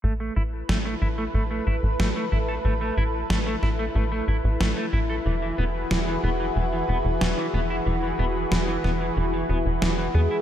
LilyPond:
<<
  \new Staff \with { instrumentName = "Analog synth pad" } { \time 4/4 \key e \mixolydian \tempo 4 = 92 <e' a' b'>1~ | <e' a' b'>1 | <e fis' gis' b'>1~ | <e fis' gis' b'>1 | }
  \new Staff \with { instrumentName = "Soft synth lead" } { \time 4/4 \key e \mixolydian r1 | r1 | r1 | r2. r8 gis'8 | }
  \new Staff \with { instrumentName = "Clean electric guitar" } { \time 4/4 \key e \mixolydian a16 a16 e'16 r16 a16 a16 e'16 a16 a16 a16 e'16 r16 a16 a16 e'16 a'16 | a16 a16 e'16 r16 a16 a16 e'16 a16 a16 a16 e'16 r16 a16 a16 e'16 a'16 | e16 e16 b16 r16 e16 e16 b16 e16 e16 e16 b16 r16 e16 e16 b16 e'16 | e16 e16 b16 r16 e16 e16 b16 e16 e16 e16 b16 r16 e16 e16 b16 e'16 | }
  \new Staff \with { instrumentName = "Analog synth bass" } { \clef bass \time 4/4 \key e \mixolydian a,,8 a,,8 a,,8 a,,8 a,,8 a,,16 a,,16 a,,16 r16 a,,8 | a,,8 a,,8 a,,8 a,,8 a,,8 a,,16 a,,16 a,,16 r16 a,,8 | e,,8 e,,8 e,,8 e,,8 e,,8 e,,16 e,,16 e,,16 r16 e,,8 | e,,8 e,,8 e,,8 e,,8 e,,8 e,,16 e,,16 e,,8 e,16 r16 | }
  \new DrumStaff \with { instrumentName = "Drums" } \drummode { \time 4/4 r4 sn4 r4 sn4 | r4 sn8 sn8 r4 sn4 | r4 sn4 r4 sn4 | r4 sn8 sn8 r4 sn4 | }
>>